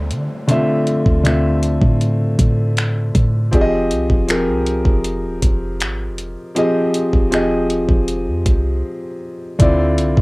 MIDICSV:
0, 0, Header, 1, 5, 480
1, 0, Start_track
1, 0, Tempo, 759494
1, 308, Time_signature, 4, 2, 24, 8
1, 6457, End_track
2, 0, Start_track
2, 0, Title_t, "Grand piano"
2, 0, Program_c, 0, 0
2, 0, Control_c, 0, 64, 127
2, 0, Note_on_c, 0, 50, 74
2, 0, Note_on_c, 0, 57, 68
2, 0, Note_on_c, 0, 60, 65
2, 0, Note_on_c, 0, 65, 67
2, 0, Note_on_c, 0, 72, 84
2, 301, Note_off_c, 0, 50, 0
2, 301, Note_on_c, 0, 50, 78
2, 307, Note_off_c, 0, 57, 0
2, 307, Note_on_c, 0, 57, 76
2, 312, Note_off_c, 0, 60, 0
2, 312, Note_on_c, 0, 60, 76
2, 318, Note_off_c, 0, 65, 0
2, 318, Note_on_c, 0, 65, 70
2, 323, Note_on_c, 0, 76, 89
2, 658, Note_off_c, 0, 50, 0
2, 661, Note_off_c, 0, 57, 0
2, 663, Note_off_c, 0, 60, 0
2, 666, Note_off_c, 0, 65, 0
2, 669, Note_off_c, 0, 76, 0
2, 780, Note_on_c, 0, 50, 76
2, 786, Note_on_c, 0, 57, 69
2, 791, Note_on_c, 0, 60, 69
2, 796, Note_on_c, 0, 65, 66
2, 802, Note_on_c, 0, 76, 82
2, 1491, Note_off_c, 0, 50, 0
2, 1493, Note_off_c, 0, 57, 0
2, 1496, Note_off_c, 0, 60, 0
2, 1498, Note_off_c, 0, 65, 0
2, 1501, Note_off_c, 0, 76, 0
2, 2220, Note_on_c, 0, 53, 82
2, 2225, Note_on_c, 0, 60, 72
2, 2230, Note_on_c, 0, 67, 72
2, 2236, Note_on_c, 0, 68, 76
2, 2237, Control_c, 0, 64, 0
2, 2241, Note_on_c, 0, 74, 71
2, 2242, Note_off_c, 0, 72, 0
2, 2276, Note_off_c, 0, 74, 0
2, 2282, Note_on_c, 0, 75, 96
2, 2341, Control_c, 0, 64, 127
2, 2577, Note_off_c, 0, 53, 0
2, 2580, Note_off_c, 0, 60, 0
2, 2582, Note_off_c, 0, 67, 0
2, 2585, Note_off_c, 0, 68, 0
2, 2608, Note_off_c, 0, 75, 0
2, 2702, Note_on_c, 0, 53, 74
2, 2708, Note_on_c, 0, 60, 68
2, 2712, Note_on_c, 0, 67, 74
2, 2718, Note_on_c, 0, 68, 69
2, 2723, Note_on_c, 0, 70, 79
2, 3411, Note_off_c, 0, 53, 0
2, 3414, Note_off_c, 0, 60, 0
2, 3417, Note_off_c, 0, 67, 0
2, 3420, Note_off_c, 0, 68, 0
2, 3422, Note_off_c, 0, 70, 0
2, 4139, Note_on_c, 0, 53, 77
2, 4145, Note_on_c, 0, 60, 79
2, 4150, Note_on_c, 0, 67, 75
2, 4156, Note_on_c, 0, 68, 73
2, 4161, Note_on_c, 0, 75, 91
2, 4497, Note_off_c, 0, 53, 0
2, 4500, Note_off_c, 0, 60, 0
2, 4502, Note_off_c, 0, 67, 0
2, 4505, Note_off_c, 0, 68, 0
2, 4507, Note_off_c, 0, 75, 0
2, 4619, Note_on_c, 0, 53, 78
2, 4625, Note_on_c, 0, 60, 68
2, 4630, Note_on_c, 0, 67, 68
2, 4635, Note_on_c, 0, 68, 69
2, 4641, Note_on_c, 0, 75, 85
2, 5330, Note_off_c, 0, 53, 0
2, 5333, Note_off_c, 0, 60, 0
2, 5336, Note_off_c, 0, 67, 0
2, 5338, Note_off_c, 0, 68, 0
2, 5341, Note_off_c, 0, 75, 0
2, 6059, Note_on_c, 0, 50, 80
2, 6065, Note_on_c, 0, 60, 76
2, 6071, Note_on_c, 0, 64, 72
2, 6075, Control_c, 0, 64, 0
2, 6076, Note_on_c, 0, 65, 74
2, 6082, Note_on_c, 0, 74, 89
2, 6172, Control_c, 0, 64, 127
2, 6417, Note_off_c, 0, 50, 0
2, 6420, Note_off_c, 0, 60, 0
2, 6423, Note_off_c, 0, 64, 0
2, 6425, Note_off_c, 0, 65, 0
2, 6428, Note_off_c, 0, 74, 0
2, 6457, End_track
3, 0, Start_track
3, 0, Title_t, "808-style bass"
3, 0, Program_c, 1, 38
3, 0, Note_on_c, 1, 38, 96
3, 71, Note_on_c, 1, 50, 91
3, 80, Note_off_c, 1, 38, 0
3, 183, Note_off_c, 1, 50, 0
3, 670, Note_on_c, 1, 38, 93
3, 1130, Note_off_c, 1, 38, 0
3, 1149, Note_on_c, 1, 45, 96
3, 1494, Note_off_c, 1, 45, 0
3, 1510, Note_on_c, 1, 45, 98
3, 1970, Note_off_c, 1, 45, 0
3, 1991, Note_on_c, 1, 45, 98
3, 2220, Note_off_c, 1, 45, 0
3, 2230, Note_on_c, 1, 29, 100
3, 2471, Note_on_c, 1, 36, 96
3, 2480, Note_off_c, 1, 29, 0
3, 2583, Note_off_c, 1, 36, 0
3, 2591, Note_on_c, 1, 29, 99
3, 2831, Note_on_c, 1, 36, 94
3, 2841, Note_off_c, 1, 29, 0
3, 3057, Note_off_c, 1, 36, 0
3, 3069, Note_on_c, 1, 29, 96
3, 3310, Note_on_c, 1, 27, 95
3, 3320, Note_off_c, 1, 29, 0
3, 3423, Note_off_c, 1, 27, 0
3, 3429, Note_on_c, 1, 29, 98
3, 3670, Note_on_c, 1, 32, 100
3, 3679, Note_off_c, 1, 29, 0
3, 3850, Note_on_c, 1, 29, 91
3, 3859, Note_off_c, 1, 32, 0
3, 4020, Note_off_c, 1, 29, 0
3, 4509, Note_on_c, 1, 29, 97
3, 4969, Note_off_c, 1, 29, 0
3, 4986, Note_on_c, 1, 29, 98
3, 5228, Note_on_c, 1, 41, 92
3, 5237, Note_off_c, 1, 29, 0
3, 5342, Note_off_c, 1, 41, 0
3, 5349, Note_on_c, 1, 36, 97
3, 5579, Note_off_c, 1, 36, 0
3, 6067, Note_on_c, 1, 38, 97
3, 6309, Note_on_c, 1, 36, 93
3, 6319, Note_off_c, 1, 38, 0
3, 6422, Note_off_c, 1, 36, 0
3, 6430, Note_on_c, 1, 38, 92
3, 6457, Note_off_c, 1, 38, 0
3, 6457, End_track
4, 0, Start_track
4, 0, Title_t, "Downlifter"
4, 0, Program_c, 2, 103
4, 0, Note_on_c, 2, 60, 76
4, 2227, Note_off_c, 2, 60, 0
4, 6457, End_track
5, 0, Start_track
5, 0, Title_t, "Drums"
5, 68, Note_on_c, 9, 42, 65
5, 131, Note_off_c, 9, 42, 0
5, 308, Note_on_c, 9, 42, 69
5, 371, Note_off_c, 9, 42, 0
5, 549, Note_on_c, 9, 42, 64
5, 612, Note_off_c, 9, 42, 0
5, 669, Note_on_c, 9, 36, 83
5, 732, Note_off_c, 9, 36, 0
5, 789, Note_on_c, 9, 42, 60
5, 799, Note_on_c, 9, 26, 115
5, 852, Note_off_c, 9, 42, 0
5, 862, Note_off_c, 9, 26, 0
5, 1028, Note_on_c, 9, 42, 63
5, 1091, Note_off_c, 9, 42, 0
5, 1147, Note_on_c, 9, 36, 94
5, 1210, Note_off_c, 9, 36, 0
5, 1269, Note_on_c, 9, 42, 65
5, 1333, Note_off_c, 9, 42, 0
5, 1509, Note_on_c, 9, 36, 90
5, 1509, Note_on_c, 9, 42, 76
5, 1572, Note_off_c, 9, 36, 0
5, 1573, Note_off_c, 9, 42, 0
5, 1751, Note_on_c, 9, 42, 65
5, 1759, Note_on_c, 9, 26, 102
5, 1814, Note_off_c, 9, 42, 0
5, 1822, Note_off_c, 9, 26, 0
5, 1989, Note_on_c, 9, 36, 84
5, 1989, Note_on_c, 9, 42, 69
5, 2052, Note_off_c, 9, 36, 0
5, 2053, Note_off_c, 9, 42, 0
5, 2228, Note_on_c, 9, 36, 103
5, 2229, Note_on_c, 9, 42, 70
5, 2292, Note_off_c, 9, 36, 0
5, 2292, Note_off_c, 9, 42, 0
5, 2470, Note_on_c, 9, 42, 63
5, 2533, Note_off_c, 9, 42, 0
5, 2590, Note_on_c, 9, 36, 87
5, 2653, Note_off_c, 9, 36, 0
5, 2708, Note_on_c, 9, 42, 62
5, 2718, Note_on_c, 9, 26, 114
5, 2771, Note_off_c, 9, 42, 0
5, 2781, Note_off_c, 9, 26, 0
5, 2948, Note_on_c, 9, 42, 61
5, 3011, Note_off_c, 9, 42, 0
5, 3067, Note_on_c, 9, 36, 91
5, 3130, Note_off_c, 9, 36, 0
5, 3188, Note_on_c, 9, 42, 65
5, 3251, Note_off_c, 9, 42, 0
5, 3428, Note_on_c, 9, 36, 91
5, 3428, Note_on_c, 9, 42, 77
5, 3491, Note_off_c, 9, 36, 0
5, 3491, Note_off_c, 9, 42, 0
5, 3668, Note_on_c, 9, 42, 65
5, 3676, Note_on_c, 9, 26, 109
5, 3731, Note_off_c, 9, 42, 0
5, 3740, Note_off_c, 9, 26, 0
5, 3907, Note_on_c, 9, 42, 66
5, 3970, Note_off_c, 9, 42, 0
5, 4147, Note_on_c, 9, 42, 71
5, 4210, Note_off_c, 9, 42, 0
5, 4388, Note_on_c, 9, 42, 63
5, 4451, Note_off_c, 9, 42, 0
5, 4508, Note_on_c, 9, 36, 83
5, 4571, Note_off_c, 9, 36, 0
5, 4628, Note_on_c, 9, 42, 58
5, 4638, Note_on_c, 9, 26, 117
5, 4691, Note_off_c, 9, 42, 0
5, 4701, Note_off_c, 9, 26, 0
5, 4866, Note_on_c, 9, 42, 63
5, 4929, Note_off_c, 9, 42, 0
5, 4985, Note_on_c, 9, 36, 93
5, 5048, Note_off_c, 9, 36, 0
5, 5107, Note_on_c, 9, 42, 63
5, 5170, Note_off_c, 9, 42, 0
5, 5346, Note_on_c, 9, 42, 75
5, 5347, Note_on_c, 9, 36, 91
5, 5409, Note_off_c, 9, 42, 0
5, 5410, Note_off_c, 9, 36, 0
5, 6065, Note_on_c, 9, 42, 70
5, 6066, Note_on_c, 9, 36, 102
5, 6128, Note_off_c, 9, 42, 0
5, 6129, Note_off_c, 9, 36, 0
5, 6307, Note_on_c, 9, 42, 63
5, 6370, Note_off_c, 9, 42, 0
5, 6428, Note_on_c, 9, 36, 82
5, 6457, Note_off_c, 9, 36, 0
5, 6457, End_track
0, 0, End_of_file